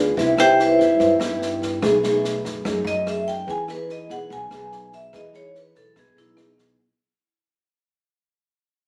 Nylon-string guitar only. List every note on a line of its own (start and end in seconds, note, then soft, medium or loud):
0.00 0.15 D3 medium
0.00 0.15 B3 medium
0.00 0.16 F4 medium
0.00 0.16 G#4 medium
0.17 0.98 C3 medium
0.17 0.34 B3 medium
0.17 0.35 E4 medium
0.17 0.35 G4 medium
0.37 0.75 B3 medium
0.37 0.76 E4 medium
0.37 0.76 G4 medium
0.79 1.17 E4 medium
0.79 1.17 G4 medium
0.98 1.80 G2 medium
1.20 1.79 B3 medium
1.20 1.79 E4 medium
1.20 1.79 G4 medium
1.82 2.63 B2 medium
1.82 1.94 A3 medium
1.82 1.95 D#4 medium
1.82 1.95 G#4 medium
2.03 2.62 A3 medium
2.03 2.62 D#4 medium
2.03 2.62 G#4 medium
2.65 3.46 F#2 medium
2.65 3.03 A3 medium
2.65 3.04 D#4 medium
2.65 3.04 G#4 medium
3.06 3.34 A3 medium
3.06 3.34 D#4 medium
3.06 3.35 G#4 medium
3.47 4.28 E3 medium
3.47 3.60 B3 medium
3.47 3.60 D#4 medium
3.47 3.60 G#4 medium
3.68 4.06 B3 medium
3.68 4.06 D#4 medium
3.68 4.06 G#4 medium
4.09 4.48 B3 medium
4.09 4.48 D#4 medium
4.09 4.48 G#4 medium
4.30 5.11 B2 medium
4.50 5.09 B3 medium
4.50 5.10 D#4 medium
4.50 5.10 G#4 medium
5.13 5.94 E3 medium
5.13 5.26 B3 medium
5.13 5.26 D#4 medium
5.13 5.26 G#4 medium
5.33 5.92 B3 medium
5.33 5.93 D#4 medium
5.33 5.93 G#4 medium
5.95 6.76 B2 medium
5.95 6.34 B3 medium
5.95 6.34 D#4 medium
5.95 6.34 G#4 medium
6.37 6.77 B3 medium
6.37 6.77 D#4 medium
6.37 6.77 G#4 medium